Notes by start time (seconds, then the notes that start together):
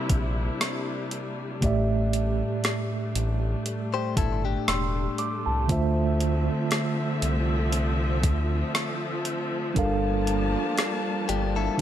Already playing: C3 G3 A#3 C4 D4 E4 A#4 D5 E5
0.10 A#1, kick, closed hi-hat
0.61 cross-stick, closed hi-hat
1.11 closed hi-hat
1.61 A1 A2 A3 G4 D5, kick, closed hi-hat
1.66 E5
2.13 closed hi-hat
2.64 cross-stick, closed hi-hat
3.15 A1, closed hi-hat
3.66 closed hi-hat
3.94 G4 C5
4.17 G1 E4 A4, kick, closed hi-hat
4.45 D4 G4
4.68 E1 C6 E6, cross-stick, closed hi-hat
5.18 D6, closed hi-hat
5.46 C2 A5
5.67 D2 D3 F3 A3 C4 F4 C5 E5, kick, closed hi-hat
5.72 E5
6.20 closed hi-hat
6.71 cross-stick, closed hi-hat
7.22 C2, closed hi-hat
7.72 closed hi-hat
8.23 D2, kick, closed hi-hat
8.75 cross-stick, closed hi-hat
9.25 closed hi-hat
9.74 G1 G3 A#3 D4 A4 A#4 A5, kick, closed hi-hat
9.79 F5
10.27 closed hi-hat
10.78 cross-stick, closed hi-hat
11.29 G1 D4 G4, closed hi-hat
11.56 E4 A4
11.78 D3